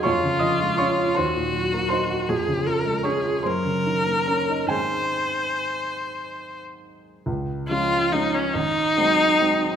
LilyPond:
<<
  \new Staff \with { instrumentName = "Viola" } { \time 6/8 \key des \major \tempo 4. = 47 f'4. ges'4. | aes'8 bes'8 aes'8 bes'4. | c''2~ c''16 r8. | r8 f'8 ees'16 des'16 ees'4. | }
  \new Staff \with { instrumentName = "Grand piano" } { \time 6/8 \key des \major <des'' des'''>8 <ees'' ees'''>8 <des'' des'''>8 <c'' c'''>4 <c'' c'''>8~ | <c'' c'''>4 <des'' des'''>8 <c'' c'''>4 <bes' bes''>8 | <aes' aes''>4. r4. | r2. | }
  \new Staff \with { instrumentName = "Grand piano" } { \clef bass \time 6/8 \key des \major f,16 des16 f16 aes16 des'16 f'16 ees,16 bes,16 ges16 bes16 ees'16 ges'16 | f,16 des16 f16 aes16 des'16 f'16 ges,16 des16 ees16 bes16 des'16 ees'16 | <aes, ees aes c'>2. | des,8 <f aes des'>8 <f aes des'>8 aes,,8 <ges aes c'>8 <ges aes c'>8 | }
>>